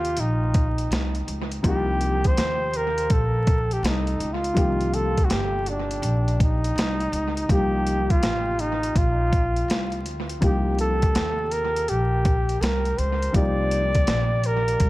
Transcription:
0.00 0.14 D#2 medium
0.00 1.59 C3 medium
0.00 1.59 F3 soft
0.00 1.60 A#3 soft
0.00 1.60 D#4 medium
0.00 0.21 F4 loud
0.00 1.61 G4 medium
0.05 closed hi-hat soft
0.17 0.87 A#1 medium
0.17 1.28 D#4 medium
0.17 closed hi-hat medium
0.54 kick medium
0.54 closed hi-hat medium
0.78 closed hi-hat soft
0.91 1.25 C2 medium
0.91 snare loud
0.91 closed hi-hat medium
1.15 closed hi-hat soft
1.27 1.62 C#2 medium
1.27 closed hi-hat medium
1.52 closed hi-hat medium
1.63 2.33 C2 loud
1.63 4.52 C3 medium
1.63 4.52 F3 medium
1.63 4.53 A#3 medium
1.63 4.53 D#4 medium
1.63 4.54 G4 medium
1.63 2.28 G4 loud
1.63 kick loud
1.63 closed hi-hat medium
2.01 closed hi-hat medium
2.24 2.78 C5 loud
2.24 kick medium
2.24 closed hi-hat medium
2.37 3.07 D#2 medium
2.37 snare loud
2.37 closed hi-hat loud
2.73 3.14 A#4 loud
2.73 closed hi-hat medium
2.98 closed hi-hat medium
3.10 3.80 A#1 medium
3.10 3.74 A4 medium
3.10 kick loud
3.10 closed hi-hat medium
3.47 kick medium
3.47 closed hi-hat medium
3.71 3.87 G4 medium
3.71 closed hi-hat soft
3.83 4.18 C2 medium
3.83 4.34 D#4 medium
3.83 snare loud
3.83 closed hi-hat medium
4.07 closed hi-hat soft
4.20 4.55 C#2 medium
4.20 closed hi-hat medium
4.33 4.96 F4 medium
4.44 closed hi-hat soft
4.54 5.26 C2 loud
4.54 7.44 C3 medium
4.54 7.45 D#3 medium
4.54 7.44 F3 medium
4.54 7.45 A#3 medium
4.54 7.46 G4 medium
4.54 kick loud
4.54 closed hi-hat medium
4.81 closed hi-hat soft
4.94 5.26 A4 medium
4.94 closed hi-hat medium
5.17 kick medium
5.17 closed hi-hat medium
5.25 5.32 F#4 medium
5.30 5.99 G1 medium
5.30 5.70 G4 medium
5.30 snare loud
5.30 closed hi-hat medium
5.66 6.41 D4 medium
5.66 closed hi-hat medium
5.91 closed hi-hat medium
6.02 6.72 A#1 medium
6.02 closed hi-hat medium
6.28 closed hi-hat soft
6.40 7.47 D#4 medium
6.40 kick medium
6.40 closed hi-hat medium
6.64 closed hi-hat soft
6.75 7.10 C2 medium
6.75 snare loud
6.75 closed hi-hat medium
7.00 closed hi-hat soft
7.12 7.47 C#2 medium
7.12 closed hi-hat medium
7.37 closed hi-hat medium
7.48 8.22 C2 loud
7.48 10.37 C3 medium
7.48 10.38 F3 soft
7.48 10.38 A#3 medium
7.48 10.39 D#4 medium
7.48 8.12 G4 loud
7.48 10.39 G4 medium
7.48 kick loud
7.48 closed hi-hat medium
7.87 closed hi-hat medium
8.10 8.62 F4 loud
8.10 kick medium
8.10 closed hi-hat medium
8.22 8.91 A1 medium
8.22 snare loud
8.22 closed hi-hat medium
8.59 8.99 D#4 medium
8.59 closed hi-hat medium
8.83 closed hi-hat soft
8.96 9.65 A#1 medium
8.96 10.06 F4 medium
8.96 kick medium
8.96 closed hi-hat medium
9.33 kick medium
9.33 closed hi-hat medium
9.56 closed hi-hat soft
9.68 10.05 C2 medium
9.68 snare loud
9.68 closed hi-hat medium
9.92 closed hi-hat soft
10.05 10.40 D2 medium
10.05 closed hi-hat medium
10.29 closed hi-hat soft
10.41 11.11 C2 loud
10.41 13.30 C3 medium
10.41 13.30 F3 medium
10.41 13.31 A#3 medium
10.41 13.31 D#4 medium
10.41 10.77 G4 medium
10.41 13.31 G4 medium
10.41 kick loud
10.41 closed hi-hat medium
10.79 11.54 A4 loud
10.79 closed hi-hat medium
11.02 kick medium
11.02 closed hi-hat medium
11.15 11.84 D#2 medium
11.15 snare loud
11.15 closed hi-hat medium
11.51 11.90 A#4 loud
11.51 closed hi-hat medium
11.76 closed hi-hat medium
11.88 12.58 A#1 medium
11.88 12.62 G4 medium
11.88 closed hi-hat medium
12.25 kick loud
12.25 closed hi-hat medium
12.49 closed hi-hat soft
12.61 12.96 C2 medium
12.61 13.00 A#4 medium
12.61 snare loud
12.61 closed hi-hat medium
12.85 closed hi-hat soft
12.98 13.33 C#2 medium
12.98 13.35 C5 medium
12.98 closed hi-hat medium
13.22 closed hi-hat soft
13.32 14.04 C2 medium
13.32 14.90 C3 medium
13.32 14.90 F3 medium
13.32 14.90 A#3 medium
13.32 14.90 D#4 medium
13.32 14.90 G4 medium
13.32 14.48 D5 loud
13.32 kick loud
13.32 closed hi-hat medium
13.71 closed hi-hat medium
13.95 kick medium
13.95 closed hi-hat medium
14.07 14.77 A#1 medium
14.07 snare loud
14.07 closed hi-hat medium
14.44 14.90 A#4 loud
14.44 closed hi-hat medium
14.68 closed hi-hat medium
14.80 14.90 C2 medium
14.80 kick medium
14.80 closed hi-hat medium

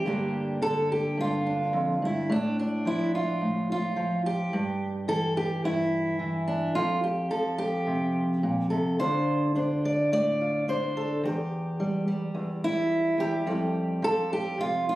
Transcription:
0.00 0.62 G4 medium
0.05 1.16 G2 medium
0.05 0.60 D3 soft
0.05 2.28 A#3 soft
0.05 1.45 D4 soft
0.62 2.30 D3 medium
0.62 0.90 A4 loud
0.92 1.19 G4 medium
1.18 1.73 G2 medium
1.18 2.03 F4 loud
1.47 2.27 D4 soft
1.73 2.02 F2 medium
2.02 2.30 G2 medium
2.02 2.32 E4 medium
2.30 3.40 A2 medium
2.30 2.58 D4 loud
2.59 3.43 D4 medium
2.85 3.95 F3 medium
2.85 3.15 E4 loud
3.15 3.70 F4 medium
3.41 4.53 A2 medium
3.72 4.26 F4 loud
3.96 4.49 F3 medium
4.26 5.08 G4 medium
4.53 5.63 G2 medium
5.08 6.18 E3 medium
5.08 5.36 A4 loud
5.37 5.65 G4 medium
5.64 6.72 G2 medium
5.64 6.75 E4 loud
6.19 6.72 E3 medium
6.48 6.76 D4 medium
6.75 8.96 F2 medium
6.75 7.03 F4 loud
7.04 7.30 G4 medium
7.31 8.96 F3 medium
7.31 7.58 A4 loud
7.58 8.70 G4 medium
7.87 8.43 C3 medium
8.43 8.71 A#2 medium
8.70 8.99 C3 medium
8.70 8.99 A4 medium
8.99 11.23 D3 medium
8.99 9.54 D4 medium
8.99 10.40 F4 soft
8.99 9.55 C5 loud
9.55 10.67 D4 medium
9.55 9.85 C5 medium
9.85 10.12 D5 medium
10.12 11.24 A2 medium
10.12 10.68 D5 loud
10.41 10.96 F4 soft
10.68 11.20 D4 medium
10.68 11.24 C5 loud
10.97 11.24 A4 medium
11.24 12.33 E2 medium
11.24 12.91 G4 medium
11.80 12.07 G3 medium
12.08 13.47 G3 medium
12.35 13.17 E2 medium
12.64 13.47 E4 loud
13.18 13.46 E2 medium
13.18 14.32 G4 loud
13.47 14.95 F2 medium
13.47 14.95 G3 medium
14.02 14.95 F3 medium
14.02 14.31 A4 loud
14.33 14.59 G4 loud
14.58 14.95 C3 medium
14.58 14.87 F4 loud
14.89 14.95 F4 loud

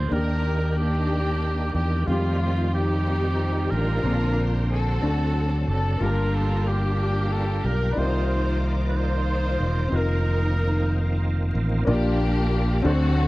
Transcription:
0.00 0.13 A#2 soft
0.00 0.10 F3 medium
0.00 0.08 A#3 medium
0.00 0.10 A#3 soft
0.00 0.11 D4 soft
0.00 0.12 F4 soft
0.00 0.11 G#4 medium
0.00 0.13 G#4 medium
0.00 0.14 C5 medium
0.08 1.71 D#2 medium
0.08 2.04 D#3 soft
0.08 1.06 D#3 medium
0.08 2.02 A#3 medium
0.08 2.04 A#3 soft
0.08 2.04 D4 soft
0.08 2.04 G4 medium
0.12 0.78 D4 medium
0.12 0.77 G4 medium
0.12 2.06 G4 medium
0.12 0.73 A#4 medium
0.12 0.78 A#4 medium
0.78 1.72 A#3 medium
0.78 1.72 D4 medium
0.78 1.74 G4 medium
0.78 1.72 G4 medium
1.74 2.05 E2 medium
1.74 2.09 G4 medium
1.74 2.06 G4 medium
2.05 3.67 F2 medium
2.05 4.00 D#3 soft
2.05 2.13 G#3 soft
2.05 2.40 F4 medium
2.09 4.01 D#3 soft
2.09 4.01 F3 medium
2.09 4.02 G3 soft
2.09 3.03 A3 medium
2.09 2.74 C4 medium
2.09 4.01 F4 soft
2.09 2.74 F4 medium
2.09 4.01 G4 medium
2.09 4.03 G4 medium
2.42 2.72 F4 medium
2.74 3.69 C4 medium
2.74 3.69 D#4 medium
2.74 3.72 G4 medium
2.74 3.73 G4 medium
3.70 4.02 A1 medium
3.70 4.67 D4 medium
3.70 4.67 F4 medium
3.70 4.42 A#4 medium
3.70 4.71 A#4 medium
4.03 4.98 A#1 medium
4.03 4.99 A#2 soft
4.03 5.03 D3 soft
4.03 5.02 A#3 soft
4.03 5.03 A#3 soft
4.03 5.00 C4 soft
4.03 5.02 C4 soft
4.03 5.01 D4 soft
4.03 4.12 G#4 soft
4.03 5.03 C5 medium
4.13 5.07 A5 medium
4.71 5.65 C4 medium
4.71 5.65 F#4 medium
4.71 5.65 A4 medium
5.01 5.64 D2 medium
5.01 5.97 D3 soft
5.01 6.01 F#3 medium
5.01 6.00 C4 soft
5.01 6.01 C4 soft
5.01 6.01 D4 soft
5.01 6.01 F#4 soft
5.01 6.01 A4 medium
5.01 6.02 A4 medium
5.68 5.98 F#1 medium
5.68 6.04 A4 medium
5.68 6.00 A4 medium
5.98 7.60 G1 medium
5.98 6.95 G2 soft
5.98 7.91 A#3 soft
5.98 7.93 A#3 soft
5.98 7.93 F4 soft
6.02 7.93 G3 medium
6.02 6.67 D4 medium
6.02 6.96 F4 medium
6.02 7.93 G4 medium
6.02 7.94 G4 soft
6.02 6.36 A#4 medium
6.02 6.67 A#4 medium
6.06 7.95 A5 medium
6.35 6.69 A4 medium
6.67 7.61 A#3 medium
6.67 7.61 D4 medium
6.67 7.34 G4 medium
6.67 7.65 G4 medium
7.32 7.67 A4 medium
7.64 7.94 B1 medium
7.64 7.94 A#4 medium
7.64 7.98 A#4 medium
7.92 9.88 D#4 medium
7.92 8.00 B4 medium
7.92 9.86 D5 medium
7.96 9.56 C2 medium
7.96 8.90 C3 medium
7.96 8.04 D3 soft
7.96 9.89 A#3 soft
7.96 8.91 D#4 medium
7.96 8.91 F4 medium
7.96 9.89 F4 soft
7.96 9.90 F4 medium
7.96 9.90 A#4 medium
7.96 8.91 C5 medium
7.96 8.69 C5 medium
7.96 9.90 D5 soft
8.05 9.92 D#3 medium
8.88 8.98 B4 medium
8.96 9.89 D#4 medium
8.96 9.89 F4 medium
8.96 9.97 C5 medium
8.96 9.89 C5 medium
9.60 9.90 E1 medium
9.88 11.51 F1 medium
9.88 11.82 C4 medium
9.88 11.84 C4 soft
9.88 11.83 D#4 soft
9.93 11.84 D#3 medium
9.93 11.84 A#3 soft
9.93 11.19 D#4 medium
9.93 11.84 F4 soft
9.93 11.84 F4 medium
9.93 11.24 A#4 medium
9.93 11.86 A#4 medium
11.55 11.85 A1 medium
11.85 12.81 A#1 loud
11.85 12.81 A#2 medium
11.85 12.84 A#3 medium
11.85 12.85 A#3 medium
11.85 12.82 D4 medium
11.85 12.84 D4 medium
11.85 11.93 D#4 medium
11.85 12.85 F4 medium
11.85 12.85 A#4 medium
11.85 12.86 D5 medium
11.89 12.82 A#3 medium
11.89 12.82 D4 medium
11.89 12.88 F4 medium
11.89 12.82 G4 medium
12.82 13.28 D2 medium
12.82 13.28 D3 medium
12.82 13.28 F#3 medium
12.82 13.28 A3 medium
12.82 13.28 C4 medium
12.82 13.28 D4 medium
12.82 13.28 F#4 medium
12.82 13.28 A4 medium
12.82 13.28 C5 medium
12.87 13.28 A3 medium
12.87 13.28 C4 medium
12.87 13.28 F#4 medium

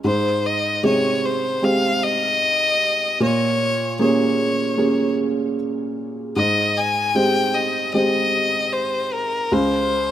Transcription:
0.04 3.16 G#2 medium
0.04 0.47 C5 medium
0.46 0.84 D#5 medium
0.83 1.60 C3 soft
0.83 1.60 G#3 soft
0.83 1.60 G4 soft
0.83 1.26 C#5 medium
1.25 1.65 C5 medium
1.62 2.39 G#3 soft
1.62 2.39 C4 soft
1.62 2.39 G4 soft
1.62 2.05 F5 medium
2.03 3.21 D#5 medium
3.20 6.32 A#2 soft
3.20 3.97 C#5 medium
3.99 4.76 A#3 soft
3.99 4.76 C#4 soft
3.99 4.76 G#4 soft
3.99 5.15 C#5 medium
4.78 5.54 A#3 soft
4.78 5.55 C#4 soft
4.78 5.55 G#4 soft
6.36 9.48 G#2 soft
6.36 6.78 D#5 medium
6.77 7.17 G#5 medium
7.15 7.91 G#3 soft
7.15 7.92 C4 soft
7.15 7.92 G4 soft
7.15 7.56 G5 medium
7.55 7.93 D#5 medium
7.94 8.70 G#3 soft
7.94 8.71 C4 soft
7.94 8.71 G4 soft
7.94 8.74 D#5 medium
8.72 9.14 C5 medium
9.13 9.54 A#4 medium
9.52 10.11 C#2 medium
9.52 10.11 C5 medium

